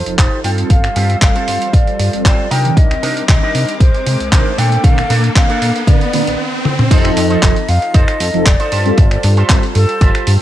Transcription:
Already playing: D#4 F4 A4 C5, riser
0.06 F1 F3 C4 D#4 A4, muted clean electric guitar stroke, closed hi-hat
0.18 F1 D#4 F4 G4 C5, kick, clap, closed hi-hat
0.44 G2 G3 C4 F4 A4 C5 G5, open hi-hat
0.57 G3 C4 F4 A4, closed hi-hat
0.70 G1 F5, kick, closed hi-hat
0.84 finger snap, closed hi-hat
0.96 G2 C4 F4 G4, open hi-hat
1.10 closed hi-hat
1.21 G1 G3 C4 F4 A4 F5, kick, clap, closed hi-hat
1.35 C4 F4 A4, closed hi-hat
1.48 G2 C5, open hi-hat
1.62 closed hi-hat
1.73 G1 D5 F5, kick, closed hi-hat
1.87 closed hi-hat
1.99 G2, muted clean electric guitar stroke, open hi-hat
2.13 G1 G3 C4 F4 A4, muted clean electric guitar stroke, closed hi-hat
2.25 G1 C4 F4 C5 D5 G5, kick, clap, closed hi-hat
2.51 C3 C4 D4 D#4 A#4 G5 A#5 D6, open hi-hat
2.64 D#3 C4 D4 A#4, closed hi-hat
2.77 C2 D#5, kick, closed hi-hat
2.91 finger snap, closed hi-hat
3.03 C3 D4 D#4 A#4, open hi-hat
3.17 closed hi-hat
3.28 C2 D#3 C4 D4 A#4 D#5, kick, clap, closed hi-hat
3.43 D4 D#4 A#4
3.55 C3, open hi-hat
3.69 closed hi-hat
3.80 C2 C5, kick, closed hi-hat
3.94 closed hi-hat
4.06 C3, muted clean electric guitar stroke, open hi-hat
4.20 C2, muted clean electric guitar stroke, closed hi-hat
4.32 C2 D#3 C4 D4 D#4 A#4 C5, kick, clap, closed hi-hat
4.58 A#2 A#3 D4 A4 G5, open hi-hat
4.72 closed hi-hat
4.84 A#1 D3 C4 D4 F5, kick, closed hi-hat
4.98 finger snap, closed hi-hat
5.10 A#2 A#3 D4 A4, open hi-hat
5.24 closed hi-hat
5.35 A#1 D3 C4 D4 A#4 F5, kick, clap, closed hi-hat
5.49 A#3 D4 A4, closed hi-hat
5.62 A#2, open hi-hat
5.76 closed hi-hat
5.87 A#1 D3 C4 D4 A#4 D5, kick, closed hi-hat
6.01 closed hi-hat
6.13 A#2 D3 C4 D4 A#4, muted clean electric guitar stroke, open hi-hat
6.27 A#1, muted clean electric guitar stroke, closed hi-hat
6.65 high tom
6.79 mid tom
6.90 F1 F3 C4 D#4 F4 A4 C5 D#5, kick, closed hi-hat, crash
7.05 finger snap, closed hi-hat
7.17 F2, open hi-hat
7.30 D#4 F4 A4 C5, closed hi-hat
7.43 F1, kick, clap, closed hi-hat
7.56 closed hi-hat
7.69 F2 F5, open hi-hat
7.82 muted clean electric guitar stroke, closed hi-hat
7.94 F1 D#4 F4 A4 C5 D#5, kick, closed hi-hat
8.08 finger snap, closed hi-hat
8.20 F2, open hi-hat
8.33 F1 F3 C4 D#4 A4, closed hi-hat
8.46 F1 D5, kick, clap, closed hi-hat
8.59 D#4 F4 A4 C5, closed hi-hat
8.72 G2 G3 F4 G4 A4 C5, open hi-hat
8.85 G3 C4 F4 A4, closed hi-hat
8.98 G1 D5, kick, closed hi-hat
9.11 finger snap, closed hi-hat
9.23 G2, open hi-hat
9.37 F4 G4 A4 C5, closed hi-hat
9.49 G1 G3 C4 F4 A4, kick, clap, closed hi-hat
9.63 closed hi-hat
9.75 G2 A4, open hi-hat
9.89 muted clean electric guitar stroke, closed hi-hat
10.01 G1 F4 G4 A4 C5, kick, closed hi-hat
10.15 finger snap, closed hi-hat
10.27 G2, open hi-hat

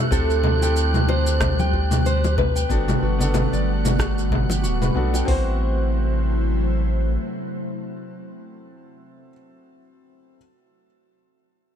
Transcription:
Already playing: D3 G3 A3 C4 F#4 G4 E5 F#6
0.11 D2 C4 E4 G4 A4, kick, shaker
0.30 shaker
0.44 low conga
0.59 C4 E4 G4 A4 G5, high bongo, shaker
0.76 shaker
0.94 high conga, low conga, shaker
1.08 G4 C5, high bongo
1.27 shaker
1.41 kick, cross-stick, low conga, shaker
1.59 G5, high conga, shaker
1.73 kick, high bongo
1.91 low conga, shaker
2.06 G4 C5, shaker
2.24 high bongo, high conga, shaker
2.38 B4, kick, low conga
2.56 G5, shaker
2.69 G1 D3 A3 B3 D4 F#4 A4 F#5, kick, shaker
2.88 high bongo, low conga, shaker
3.03 G1 F#4
3.19 B3 D4 F#5, low conga, shaker
3.23 A4
3.34 high bongo, low conga, shaker
3.53 G1 D5, high conga, shaker
3.85 low conga, shaker
3.99 F#4, kick, cross-stick, high bongo, shaker
4.18 shaker
4.31 kick, low conga
4.49 G4, high bongo, high conga, shaker
4.63 D1 F#4, shaker
4.82 B4, low conga, shaker
4.95 B1 B3 D4 F#4 A4 F#5
5.14 G5, high bongo, shaker
5.25 A1 C3 F#3 A3 C4 E4 F#4 C5, kick, open hi-hat
5.29 F#4 C5

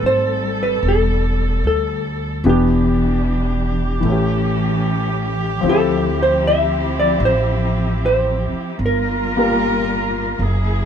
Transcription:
Already playing: G3 A3 C4 A4
0.03 G#1 C5
0.63 B4
0.83 E1
0.88 A4
1.64 D2 A4
2.43 E1 E3 B3 D4 G4
2.49 G4
4.00 A1 E3 A3
4.05 A3 C#4
4.12 G4
5.61 D2 F3 C4
5.65 F3 E4
5.69 G4 A4
6.23 C5
6.47 E5
7.00 D5
7.20 A1
7.25 C5
8.06 C5
8.53 muted upright bass stroke
8.79 G1
8.83 G3 A#3 F4 A#4
9.37 G3 A#3 F4 A#4
10.39 F#1
10.44 F#3 E4 G#4

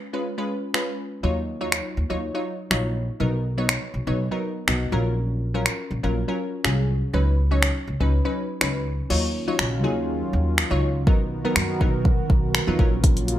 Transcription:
0.13 G#3 C#4 F4 B4
0.38 G#3 C#4 F4 B4
0.74 G#3 C#4 F4 B4, finger snap
1.23 D#2 F#3 D#4 F4 C#5
1.61 F#3 D#4 F4 C#5
1.72 finger snap
1.97 D#2
2.10 D#2 F#3 D#4 F4 C#5
2.34 F#3 D#4 F4 C#5
2.71 A#1 F#3 D#4 F4 C#5, finger snap
3.20 B1 F#3 B3 D#4 A#4
3.58 F#3 B3 D#4 C#5
3.69 finger snap
3.94 B1
4.07 B1 F#3 B3 D#4 C#5
4.31 F#3 B3 D#4 A#4
4.68 B1 F#3 B3 D#4 F#4, finger snap
4.92 A#1 F#3 C#4 F4 A#4
5.54 F#3 C#4 F4 A#4
5.66 finger snap
5.91 A#1
6.03 A#1 F#3 C#4 F4 A#4
6.28 F#3 C#4 F4 A#4
6.64 C2 F#3 C#4 F4 G#4, finger snap
7.13 C#2 F#3 C#4 D#4 B4
7.51 F#3 C#4 D#4 C#5
7.63 finger snap
7.87 C#2
8.00 C#2 F#3 C#4 D#4 B4
8.25 F#3 C#4 D#4 B4
8.61 C#2 F#3 C#4 D#4 B4, finger snap
9.10 D#2 D#3 F#3 C#4 D#4 F4 C#5, crash
9.48 F#3 D#4 F4 C#5
9.59 A#1, finger snap
9.84 D#2 F#3 D#4 F4 G#4
10.33 D#2
10.58 finger snap
10.70 C#2 F#3 D#4 F4 C#5
11.07 B1 D#3 F#3 B3 D#4 F#4 A#4, kick
11.44 F#3 B3 D#4 A#4
11.56 F#2, finger snap
11.80 B1 F#3 B3 D#4 A#4, kick
12.05 kick
12.30 B1, kick
12.55 finger snap
12.67 F2 F#3 B3 D#4 F4
12.79 A#1 C#3 F#3 A#3 C#4 F4 A#4, kick
13.04 kick, closed hi-hat
13.17 closed hi-hat
13.28 closed hi-hat

